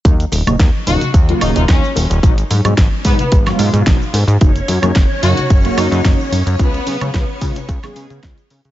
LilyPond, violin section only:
\new Staff \with { instrumentName = "Violin section" } { \time 4/4 \key dis \minor \tempo 4 = 110 r4. fis'16 r8. dis'16 dis'16 cis'16 r8. | r4. b16 b16 r2 | r4. fis'16 r8. dis'16 dis'16 r4 | b4. r2 r8 | }